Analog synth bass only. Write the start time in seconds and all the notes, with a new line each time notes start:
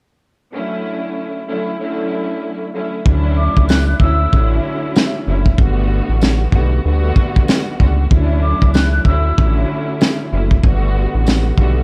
3.06 D2
3.57 C#2
4.00 D2
4.33 A1
5.27 F#1
5.58 G1
6.09 A1
6.53 B1
6.85 D2
7.80 C#2
8.11 D2
8.62 C#2
9.05 D2
9.38 A1
10.33 F#1
10.64 G1
11.14 A1
11.58 B1